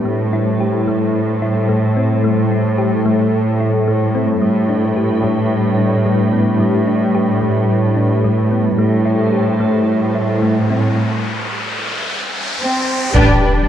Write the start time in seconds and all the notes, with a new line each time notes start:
0.05 A2 G3 A3 E4 A4 C5
0.33 E4
0.61 G4
0.88 A3
1.42 E4
1.69 A3
1.97 C4
2.24 A3
2.51 E4
2.78 G4
3.05 A3
3.60 E4
3.88 A3
4.15 C4
4.41 A2 G3 D4 G4 B4
4.69 D4
4.96 G4
5.23 G3
5.78 D4
6.06 G3
6.33 B3
6.60 G3
6.87 D4
7.15 G4
7.42 G3
7.96 D4
8.24 G3
8.51 B3
8.78 A2 G3 A3 E4 A4 C5, riser
9.05 E4
9.32 G4
9.60 A3
10.15 E4
10.42 A3
10.70 C4
12.60 C4
13.14 A1 G3 D4 G4 B4 G5, taiko, impact
13.42 A1 G4 B4